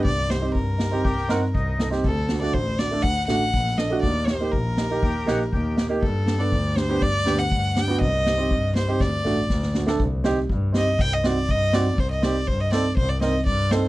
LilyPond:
<<
  \new Staff \with { instrumentName = "Violin" } { \time 4/4 \tempo 4 = 121 d''8 c''8 bes'2~ bes'8 r8 | a'8. d''16 c''8 d''8 fis''8 fis''4 ees''8 | d''8 c''8 bes'2~ bes'8 r8 | a'8. d''8. c''8 d''8. fis''8. g''8 |
ees''4. c''8 d''4. r8 | r4. ees''8 g''16 ees''16 d''8 ees''8 d''8 | c''16 ees''16 d''8 c''16 ees''16 d''8 c''16 d''16 ees''8 d''8 c''8 | }
  \new Staff \with { instrumentName = "Accordion" } { \time 4/4 r2 g'8 fis'8 ees'8. r16 | r1 | r2 g'8 fis'8 g'8. r16 | r1 |
r1 | r1 | r1 | }
  \new Staff \with { instrumentName = "Upright piano" } { \time 4/4 r8 <ees' g'>16 <c' ees' g'>16 r8 <ees' g'>16 <c' ees' g'>16 r8 <c' ees' bes'>16 r8. <ees' a'>16 <c' ees' g'>16 | r8 <d' fis'>16 <a d' fis'>16 r8 <d' fis'>16 <a d' a'>16 r8 <a d' fis'>16 r8. <d' a'>16 <a d' fis'>16 | r8 <ees' g'>16 <bes ees' g'>16 r8 <ees' g'>16 <bes ees' g'>16 r8 <bes ees' g'>16 r8. <ees' g'>16 <bes ees' g'>16 | r8 <d' g'>16 <b d' a'>16 r8 <d' g'>16 <b d' g'>16 r8 <b d' g'>16 r8. <d' g'>16 <b d' fis'>16 |
r8 <ees' g'>16 <c' ees' g'>16 r8 <ees' g'>16 <c' ees' g'>16 r8 <a d' fis'>16 r8. <d' fis'>16 <a d' a'>16 | r8 <c' ees' g'>16 r8. <c' ees' g'>16 r8. <c' ees' fis'>16 r8. <c' ees' fis'>16 r16 | r8 <c' ees' g'>16 r8. <c' ees' a'>16 r8. <c' ees' bes'>16 r8. <c' ees' a'>16 r16 | }
  \new Staff \with { instrumentName = "Double bass" } { \clef bass \time 4/4 c,4 g,4 c,8 g,16 r16 c,4 | d,4 a,,4 d,8 a,,16 r16 bes,,4 | ees,4 bes,,4 ees,8 bes,,16 r16 ees,4 | g,4 d,4 g,8 d,16 r16 g,4 |
c,4 g,4 d,8 a,,16 r16 d,4 | c,4 g,4 c,4 g,4 | c,4 g,4 c,4 g,4 | }
  \new DrumStaff \with { instrumentName = "Drums" } \drummode { \time 4/4 bd8 sn8 bd8 sn8 bd16 sn16 sn8 bd8 sn16 sn16 | bd8 sn8 bd8 sn8 bd8 sn8 bd16 sn16 sn8 | bd8 sn8 bd8 sn8 bd8 sn8 bd8 sn8 | bd8 sn8 bd8 sn8 bd8 sn8 bd8 sn8 |
bd8 sn8 bd8 sn8 <bd sn>8 sn8 <bd sn>16 sn16 sn16 sn16 | bd8 sn8 bd8 sn8 <bd sn>8 sn8 bd8 sn8 | bd8 sn8 bd8 sn8 bd8 sn8 bd8 sn8 | }
>>